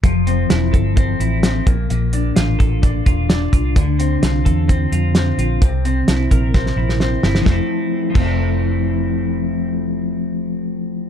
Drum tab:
CC |----------------|----------------|----------------|----------------|
HH |x-x-x-x-x-x-x-x-|x-x-x-x-x-x-x-x-|x-x-x-x-x-x-x-x-|x-x-x-x---------|
SD |----o-------o---|----o-------o---|----o-------o---|----o---oo-oo-oo|
BD |o-----o-o-----o-|------o-o-o---o-|o-----o-o-------|o-----o-o-------|

CC |------x---------|----------------|
HH |----------------|----------------|
SD |o---------------|----------------|
BD |o-----o---------|----------------|